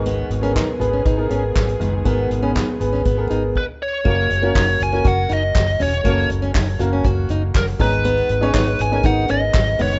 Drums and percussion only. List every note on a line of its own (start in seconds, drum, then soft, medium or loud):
0.06 closed hi-hat medium
0.31 closed hi-hat medium
0.44 closed hi-hat soft
0.56 kick medium
0.56 snare loud
0.56 clap medium
0.56 closed hi-hat medium
0.81 closed hi-hat medium
0.81 floor tom medium
1.06 kick loud
1.06 closed hi-hat medium
1.30 closed hi-hat medium
1.56 kick loud
1.56 snare medium
1.56 clap medium
1.56 closed hi-hat medium
1.69 closed hi-hat medium
1.81 closed hi-hat medium
1.81 floor tom medium
2.06 kick medium
2.06 closed hi-hat medium
2.31 closed hi-hat medium
2.56 kick medium
2.56 snare loud
2.56 clap medium
2.56 closed hi-hat medium
2.81 closed hi-hat medium
2.81 floor tom medium
2.94 snare soft
3.06 kick loud
3.06 closed hi-hat medium
3.31 closed hi-hat medium
3.56 kick medium
3.56 crash medium
4.05 kick loud
4.05 crash medium
4.30 hi-hat pedal medium
4.30 open hi-hat medium
4.55 kick loud
4.55 snare loud
4.55 clap medium
4.55 hi-hat pedal medium
4.55 open hi-hat medium
4.80 floor tom medium
4.80 hi-hat pedal medium
4.80 open hi-hat medium
4.93 snare soft
5.05 kick loud
5.05 hi-hat pedal medium
5.05 open hi-hat medium
5.29 hi-hat pedal medium
5.29 open hi-hat medium
5.55 kick loud
5.55 snare loud
5.55 clap medium
5.55 hi-hat pedal medium
5.55 open hi-hat medium
5.67 open hi-hat medium
5.80 floor tom medium
5.80 hi-hat pedal medium
5.80 open hi-hat medium
5.92 floor tom medium
5.92 hi-hat pedal medium
6.05 kick loud
6.05 hi-hat pedal medium
6.05 open hi-hat medium
6.18 open hi-hat soft
6.30 hi-hat pedal medium
6.30 open hi-hat medium
6.42 hi-hat pedal medium
6.54 kick loud
6.54 snare loud
6.54 clap medium
6.54 hi-hat pedal medium
6.54 open hi-hat medium
6.79 floor tom medium
6.79 hi-hat pedal medium
6.79 open hi-hat medium
7.04 kick loud
7.04 hi-hat pedal medium
7.04 open hi-hat medium
7.29 hi-hat pedal medium
7.29 open hi-hat medium
7.54 kick loud
7.54 snare loud
7.54 clap medium
7.54 hi-hat pedal medium
7.54 open hi-hat medium
7.67 open hi-hat medium
7.79 kick loud
7.79 floor tom medium
7.79 hi-hat pedal medium
7.79 open hi-hat medium
7.92 hi-hat pedal medium
8.04 hi-hat pedal medium
8.04 open hi-hat loud
8.17 open hi-hat soft
8.29 hi-hat pedal medium
8.29 open hi-hat medium
8.42 hi-hat pedal medium
8.54 kick loud
8.54 snare loud
8.54 clap medium
8.54 hi-hat pedal medium
8.54 open hi-hat medium
8.79 floor tom medium
8.79 hi-hat pedal medium
8.79 open hi-hat medium
8.91 snare soft
9.03 kick loud
9.03 hi-hat pedal medium
9.03 open hi-hat medium
9.28 hi-hat pedal medium
9.28 open hi-hat medium
9.53 kick loud
9.53 snare loud
9.53 clap medium
9.53 hi-hat pedal medium
9.53 open hi-hat loud
9.66 open hi-hat medium
9.79 floor tom medium
9.79 hi-hat pedal medium
9.79 open hi-hat medium
9.91 hi-hat pedal medium